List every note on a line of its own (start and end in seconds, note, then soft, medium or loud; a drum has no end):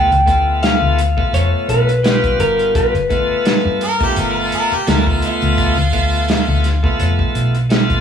0.00 0.11 A3 medium
0.00 0.11 B3 medium
0.00 0.12 F4 medium
0.00 0.63 G5 loud
0.11 0.78 D2 medium
0.11 closed hi-hat soft
0.26 1.01 A3 medium
0.26 1.01 B3 medium
0.26 1.02 F4 medium
0.26 kick medium
0.26 closed hi-hat medium
0.63 1.30 F5 medium
0.63 snare medium
0.63 closed hi-hat medium
0.82 1.15 D2 loud
0.99 closed hi-hat medium
1.17 1.91 A3 medium
1.17 1.91 B3 medium
1.17 1.92 F4 medium
1.17 kick medium
1.33 1.52 F1 medium
1.33 1.69 C#5 medium
1.33 closed hi-hat medium
1.69 2.36 B1 medium
1.69 2.40 B4 medium
1.69 closed hi-hat medium
1.89 closed hi-hat soft
2.03 2.94 G3 medium
2.03 2.95 B3 medium
2.03 2.95 F4 medium
2.03 snare loud
2.03 closed hi-hat medium
2.24 kick medium
2.24 closed hi-hat soft
2.39 2.73 G1 medium
2.39 2.75 A#4 medium
2.39 closed hi-hat medium
2.59 closed hi-hat soft
2.75 3.78 B4 medium
2.75 kick loud
2.75 closed hi-hat medium
2.94 3.28 G1 medium
2.94 closed hi-hat soft
3.10 3.84 A3 medium
3.10 3.85 B3 medium
3.10 3.85 F4 medium
3.10 kick medium
3.10 closed hi-hat medium
3.45 snare loud
3.45 closed hi-hat medium
3.65 3.99 G2 medium
3.81 4.01 A#4 loud
3.81 closed hi-hat medium
4.00 4.74 A3 medium
4.00 4.74 B3 medium
4.00 4.75 F4 medium
4.00 4.17 G4 medium
4.00 kick medium
4.00 snare soft
4.00 closed hi-hat soft
4.16 4.50 G1 loud
4.16 4.41 A#4 medium
4.16 closed hi-hat medium
4.39 4.53 F4 medium
4.52 4.76 A#4 medium
4.52 closed hi-hat medium
4.72 4.88 G4 medium
4.72 muted fingered electric bass stroke soft
4.72 closed hi-hat soft
4.87 5.21 D2 medium
4.87 5.77 A3 loud
4.87 5.78 B3 medium
4.87 5.78 F4 loud
4.87 5.11 A#4 medium
4.87 snare loud
4.87 closed hi-hat medium
5.07 5.23 F4 medium
5.07 kick medium
5.22 7.32 F4 medium
5.22 closed hi-hat medium
5.42 5.76 D2 medium
5.42 closed hi-hat soft
5.58 kick loud
5.58 closed hi-hat medium
5.77 6.45 D2 medium
5.77 closed hi-hat soft
5.93 6.67 A3 medium
5.93 6.68 B3 medium
5.93 6.68 F4 medium
5.93 kick medium
5.93 closed hi-hat soft
6.29 snare loud
6.29 closed hi-hat medium
6.48 6.82 D2 medium
6.64 snare soft
6.64 closed hi-hat medium
6.83 7.57 A3 medium
6.83 7.57 B3 medium
6.83 7.58 F4 medium
6.83 kick medium
7.00 7.18 F1 medium
7.00 closed hi-hat medium
7.19 kick medium
7.35 8.01 B1 medium
7.35 closed hi-hat medium
7.55 closed hi-hat soft
7.69 8.01 A3 loud
7.69 8.01 B3 medium
7.69 8.01 F4 loud
7.69 snare loud
7.69 closed hi-hat medium
7.90 kick medium
7.90 closed hi-hat soft